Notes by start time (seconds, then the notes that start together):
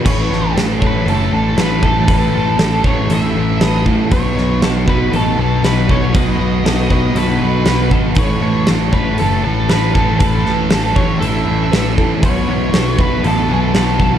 0.05 A1 A2 E3 A3 C#4 A4 B4 C#5, kick, crash
0.30 A1 A3 C#4 A4, snare
0.35 E3
0.55 A1 A2 E3 A3 C#4 A4, snare, open hi-hat
0.59 A4
0.80 C#4 A4 C#5, kick
0.84 E3 A3 B4
1.05 F#1 A2 E3 A3 C#4 A4, open hi-hat
1.09 A4
1.31 A1 E3 A3 C#4 A4
1.56 A1 A2 E3 A3 C#4 B4, snare, open hi-hat
1.60 A4 B4
1.81 E3 A3 A4, kick
1.85 A3 C#4 A4
2.08 A1 A2 E3 A3 C#4 B4, kick, open hi-hat
2.12 A4
2.32 A1 E3 A3 A4
2.36 A3 C#4
2.57 A1 A2 E3 A4, snare, open hi-hat
2.61 A3 C#4 A4
2.83 A1 E3 A3 C#4 A4 C#5, kick
2.87 A3 C#5
3.09 A1 A2 E3 A3 C#4 A4, open hi-hat
3.14 E5
3.35 A1 E3 A3 C#4 A4
3.40 A3
3.60 A1 A2 E3 A3 B4 D#5, snare, open hi-hat
3.65 C#4 A4
3.86 A2 A3 A4, kick
3.90 E3 A3 C#4
4.11 B1 B2 F#3 B3 B4 C#5, kick, open hi-hat
4.15 D#4 F#4
4.38 B1 F#3 B3 D#4 F#4, snare
4.62 B1 B2 F#3 B3 D#4 F#4 A4, snare, open hi-hat
4.86 F#3 B3 D#4 F#4 B4, kick
4.91 B3
5.12 A1 B2 F#3 B3 D#4 A4, open hi-hat
5.16 F#4
5.37 B1 F#3 B3 D#4 F#4
5.41 B3 A4
5.62 B1 B2 F#3 B3 B4, snare, open hi-hat
5.67 D#4 F#4
5.88 F#3 B3 D#4 F#4 A4 C#5, kick
6.14 B1 B2 F#3 B3 D#4 F#4 B4 D#5, kick, open hi-hat
6.38 B1 F#3 B3 D#4 F#4
6.43 B3
6.64 B1 B2 F#3 B3 D#4 F#4 A4, snare, open hi-hat
6.89 B1 B3 D#4 F#4 B4 D#5, kick
6.93 F#3
7.14 B1 B2 F#3 B3 D#4 A4 B4, open hi-hat
7.18 F#4
7.40 B1 F#3 B3 D#4 F#4
7.44 B3
7.65 B1 B2 F#3 B3 D#4 B4, snare, open hi-hat
7.69 F#4
7.90 G#1 F#3 B3 D#4 F#4 A4, kick
7.94 B3
8.15 A1 A2 E3 A3 B4 C#5, kick, open hi-hat
8.20 C#4 A4
8.41 A1 E3 A3 C#4 A4
8.46 A3
8.67 A1 A2 E3 A3 C#4 A4, snare, open hi-hat
8.71 A4
8.92 E3 A3 C#4 A4 B4 C#5, kick
8.97 A3
9.18 F#1 A2 E3 A3 C#4 A4, open hi-hat
9.43 A1 E3 C#4 A4
9.47 A3
9.69 A1 A2 E3 A3 C#4 B4, snare, open hi-hat
9.73 A4
9.94 E3 A3 C#4 A4, kick
10.19 A1 A2 E3 A3 C#4 A4 B4, kick, open hi-hat
10.23 A4
10.45 A1 E3 A3 C#4 A4, snare
10.50 A3
10.70 A1 A2 E3 A3 C#4 A4, snare, open hi-hat
10.96 A1 C#4 A4 C#5, kick
11.00 E3 A3
11.19 A1 A2 E3 A4 E5, open hi-hat
11.24 A3 C#4 A4
11.47 A1 C#4 A4
11.51 E3 A3
11.72 A1 A2 E3 A3 C#4 B4, snare, open hi-hat
11.76 A4
11.97 A2 E3 C#4 A4, kick
12.01 A3
12.23 B1 B2 E3 F#3 B3 E4 F#4 B4 C#5, kick, open hi-hat
12.47 B1 F#3 B3 E4 F#4
12.72 B1 B2 E3 F#3 B3 E4 F#4 A4, snare, open hi-hat
12.98 F#3 B3 E4 F#4 B4, kick
13.24 A1 B2 E3 F#3 B3 E4 F#4 A4, open hi-hat
13.49 B1 F#3 B3 E4 F#4 A4
13.74 B1 B2 E3 F#3 B3 E4 F#4 B4, snare, open hi-hat
14.00 F#3 B3 E4 F#4 A4, kick